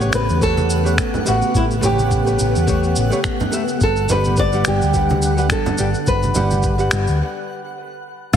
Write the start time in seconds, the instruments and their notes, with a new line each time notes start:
Already playing: fingered electric bass A1, string machine C#3 A3 B3 G4, nylon-string guitar C#5, synth texture F#5
0.00 nylon-string guitar A3 G4 B4 C#5, cabasa
0.13 fingered electric bass A1, nylon-string guitar B4, finger snap, cabasa
0.29 fingered electric bass E2, cabasa
0.40 nylon-string guitar A3 G4 A4 B4 C#5, kick, cabasa
0.57 high conga, cabasa
0.70 cabasa
0.84 nylon-string guitar A3 G4 B4 C#5, cabasa
0.98 finger snap, kick, cabasa
1.14 low conga, cabasa
1.24 fingered electric bass A1, nylon-string guitar A3 F#4 G4 B4 E5, cabasa
1.42 cabasa
1.55 fingered electric bass A1, nylon-string guitar E4, kick, cabasa
1.71 cabasa
1.81 fingered electric bass A1, nylon-string guitar A3 G4 B4 C#5, low conga, cabasa
1.85 nylon-string guitar G4
1.99 high conga, cabasa
2.11 kick, cabasa
2.25 nylon-string guitar A3 G4 B4 C#5, cabasa
2.39 fingered electric bass A1, cabasa
2.56 fingered electric bass E2, cabasa
2.67 nylon-string guitar A3 G4 B4 C#5, kick, cabasa
2.83 cabasa
2.96 fingered electric bass A1, cabasa
3.10 nylon-string guitar A3 G4 B4 C#5, cabasa
3.24 finger snap, kick, cabasa
3.40 low conga, cabasa
3.51 nylon-string guitar A3 G4 B4 E5, cabasa
3.68 cabasa
3.80 fingered electric bass G1, string machine D3 G3 F#5, nylon-string guitar A4, kick, cabasa
3.96 cabasa
4.09 fingered electric bass G1, nylon-string guitar G3 G4 B4 F#5, low conga, cabasa
4.24 high conga, cabasa
4.37 nylon-string guitar D5, kick, cabasa
4.53 nylon-string guitar G3 G4 B4 F#5, cabasa
4.65 fingered electric bass G1, nylon-string guitar G4, finger snap, cabasa
4.82 fingered electric bass D2, cabasa
4.93 nylon-string guitar G3 G4 B4 F#5, kick, cabasa
5.10 high conga, cabasa
5.22 cabasa
5.37 nylon-string guitar G3 G4 B4 F#5, cabasa
5.50 nylon-string guitar A4, finger snap, kick, cabasa
5.66 low conga, cabasa
5.78 fingered electric bass G1, nylon-string guitar G3 G4 B4 G5, cabasa
5.94 cabasa
6.07 fingered electric bass G1, string machine G4, nylon-string guitar B4, kick, cabasa
6.23 high conga, cabasa
6.34 fingered electric bass G1, nylon-string guitar G3 G4 B4 F#5, low conga, cabasa
6.51 high conga, cabasa
6.63 kick, cabasa
6.78 nylon-string guitar G3 G4 B4 F#5, cabasa
6.91 fingered electric bass G1, finger snap, cabasa
7.07 fingered electric bass D2, cabasa
8.33 kalimba A3